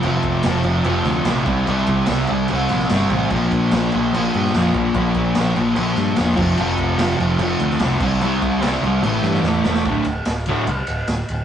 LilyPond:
<<
  \new Staff \with { instrumentName = "Distorted electric guitar" } { \clef bass \time 4/4 \key d \minor \tempo 4 = 147 <f, c f>4 <f, c f>8 <c f>8 <f, c f>4 <f, c f>8 <c g c'>8 | <c g c'>4 <c g c'>8 <g c'>8 <c g c'>4 <c g c'>8 <g c'>8 | <bes, f bes>4 <bes, f bes>8 <f bes>8 <bes, f bes>4 <bes, f bes>8 <f bes>8 | <bes, f bes>4 <bes, f bes>8 <f bes>8 <bes, f bes>4 <bes, f bes>8 <f, c f>8 |
<f, c f>4 <f, c f>8 <c f>8 <f, c f>4 <f, c f>8 <c g c'>8 | <c g c'>4 <c g c'>8 <g c'>8 <a, e a>4 <a, e a>8 <e a>8 | <d, a, d>8 r4 <d, a, d>8 r2 | }
  \new Staff \with { instrumentName = "Picked electric bass" } { \clef bass \time 4/4 \key d \minor f,,8 f,,8 f,,8 f,,8 f,,8 d,8 bes,,8 c,8 | c,8 c,8 c,8 c,8 c,8 bes,,8 g,,8 a,,8 | bes,,8 bes,,8 bes,,8 bes,,8 bes,,8 g,8 f,8 bes,,8 | bes,,8 bes,,8 bes,,8 bes,,8 bes,,8 g,8 e,,8 f,,8 |
f,,8 f,,8 f,,8 f,,8 f,,8 d,8 c,8 c,8 | c,8 c,8 c,8 c,8 a,,8 g,8 e,8 e,,8 | d,,8 d,,8 d,,4 c,8 d,,8 d,,8 d,,8 | }
  \new DrumStaff \with { instrumentName = "Drums" } \drummode { \time 4/4 cymc8 <cymc bd>8 <cymc sn>8 cymc8 cymc8 <cymc sn>8 <cymc sn>8 <cymc bd>8 | cymc8 <cymc bd>8 <cymc sn>8 cymc8 cymc8 <cymc sn>16 sn16 <cymc sn>8 <cymc bd>8 | <cymc bd>8 <cymc bd>8 <cymc sn>8 cymc8 cymc8 cymc16 sn16 <cymc sn>8 <cymc bd>8 | <cymc bd>8 <cymc bd>8 <cymc sn>8 cymc8 cymc8 <cymc sn>8 <cymc sn>8 <cymc bd>8 |
cymc8 <cymc bd>8 <cymc sn>8 cymc8 cymc8 cymc16 sn16 <cymc sn>8 <cymc bd>8 | cymc8 <cymc bd>8 <cymc sn>8 cymc8 cymc8 <cymc sn>16 sn16 sn8 sn16 sn16 | <bd cymr>8 cymr8 <cymr sn>8 cymr8 cymr8 cymr8 <cymr sn>8 cymr8 | }
>>